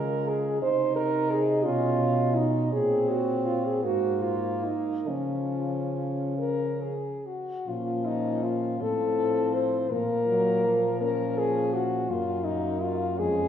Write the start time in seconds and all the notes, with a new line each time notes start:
Already playing: C#3 G#3 F4 A#4
0.28 G#4
0.62 C3 D#4 C5 D#5
0.96 A#4
1.31 G#4
1.64 B2 C#4 F4
2.36 D#4
2.71 A#2 C4 G#4 C#5
3.09 F#4
3.46 F4
3.66 G#4
3.84 G#2 A#3 F#4 C5
4.22 F4
4.64 D#4
5.07 C#3 F3 C#4 F4
6.38 A#4
6.82 G#4
7.26 F#4
7.68 A#2 F3 C#4 F4
8.06 D#4
8.44 F4
8.80 A2 F3 C4 A4
9.54 C5
9.90 A#2 F3 A#3 A#4
10.28 F#3
10.66 F3
11.01 C#4 A#4
11.38 G#4
11.74 F#4
12.09 F#2 A#3 C#4 F4
12.45 D#4
12.82 F4
13.19 F2 G#3 C#4 G#4